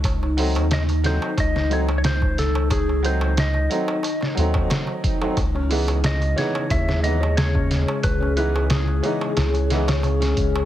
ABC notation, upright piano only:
X:1
M:4/4
L:1/16
Q:"Swing 16ths" 1/4=90
K:C#m
V:1 name="Upright piano"
z2 [F,A,^B,D] z3 [F,A,B,D] z3 [F,A,B,D] z4 z | z2 [F,A,^B,D] z3 [F,A,B,D] z3 [F,A,B,D]4- [F,A,B,D] [F,A,B,D] | z2 [E,G,B,D] z3 [E,G,B,D] z3 [E,G,B,D] z4 z | z2 [E,G,B,D] z3 [E,G,B,D] z3 [E,G,B,D] z4 z |]